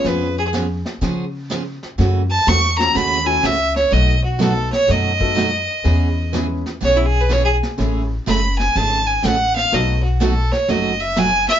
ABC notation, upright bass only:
X:1
M:4/4
L:1/8
Q:"Swing" 1/4=124
K:Bmix
V:1 name="Upright bass" clef=bass
^E,,4 C,4 | F,,2 E,,2 D,,2 C,,2 | B,,,4 F,,4 | E,,4 B,,,4 |
A,,,2 F,,,2 G,,,2 A,,,2 | B,,,4 F,,,4 |]